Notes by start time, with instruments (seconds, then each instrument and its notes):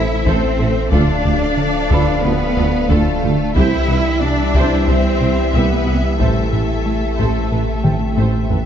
Already playing: sub bass A1, analog synth bass A2, ambient pad C3 A3 A4 E5, trombone section E3 A3, cello section E4, french horn section A4 C5, violin section E5, felt piano D6
0.26 double bass section A1, tuba A1, analog synth bass A2, cello section C4, viola section A4 C5, violin section C5, taiko
0.59 tuba A1, double bass section A1, analog synth bass A3, viola section A4
0.91 sub bass D1, analog synth bass D2, tuba D2, double bass section D2, trombone section F3 A3, ambient pad A3 D4 A4 F5, cello section D4, viola section F4 A4, french horn section A4 D5, violin section D5 F5, taiko
1.25 analog synth bass D2, tuba D2, double bass section D2, viola section F4 G4
1.57 analog synth bass D3
1.91 analog synth bass D2, double bass section D2, tuba D2, viola section F4 A4, felt piano B4 B5, taiko
2.23 analog synth bass D2, double bass section D2, tuba D2, cello section B3, viola section F4 G4, violin section B4
2.57 analog synth bass D2, double bass section D2, tuba D2, viola section F4 A4
2.89 analog synth bass D2, double bass section D2, tuba D2, cello section A3, viola section F4 A4, violin section A4, taiko
3.22 tuba D2, double bass section D2, analog synth bass D3, viola section F4 G4
3.55 analog synth bass C2, sub bass C2, tuba C2, double bass section C2, ambient pad C3 G3 E4 E5, trombone section E3 G3, cello section E4, french horn section E4 G4, viola section G4 C5, violin section E5, taiko
3.88 analog synth bass C2, tuba C2, double bass section C2, viola section G4 B4
4.21 analog synth bass C3, cello section D4, violin section D5
4.54 analog synth bass C2, tuba C2, double bass section C2, felt piano E4 E5, viola section G4 C5, taiko
4.87 analog synth bass C2, tuba C2, double bass section C2, cello section C4, viola section G4 C5, violin section C5
5.21 tuba C2, analog synth bass C2, double bass section C2, viola section G4 C5
5.53 analog synth bass C2, tuba C2, double bass section C2, cello section B3, viola section G4 E5, violin section B4, taiko
5.87 tuba C2, double bass section C2, analog synth bass C3, viola section G4 B4
6.19 sub bass A1, tuba A1, double bass section A1, analog synth bass A2, cello section A3, ambient pad A3, trombone section A3, viola section A4 C5, violin section A4, taiko
6.52 tuba A1, double bass section A1, analog synth bass A2, viola section A4 B4
6.86 analog synth bass A3
7.19 double bass section A1, tuba A1, analog synth bass A2, viola section A4 C5, taiko
7.52 double bass section A1, tuba A1, analog synth bass A2, viola section A4 B4
7.83 double bass section A1, tuba A1, analog synth bass A2, felt piano G4 G5, viola section A4 C5, taiko mid
8.17 double bass section A1, tuba A1, analog synth bass A2, viola section A4 C5, taiko high
8.50 tuba A1, double bass section A1, analog synth bass A3, viola section A4 B4, taiko low